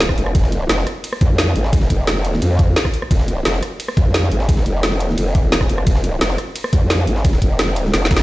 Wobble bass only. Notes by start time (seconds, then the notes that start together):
Already playing: F1
0.18 F1
0.35 F1
0.69 F1
1.21 F2
1.56 G#1
1.90 F1
2.42 F2
3.11 F1
3.45 F1
3.97 F2
4.31 G#1
4.66 F1
5.18 F1
5.69 F1
5.87 F1
6.21 F1
6.73 F2
7.07 G#1
7.42 F1
7.94 F1
8.11 F#1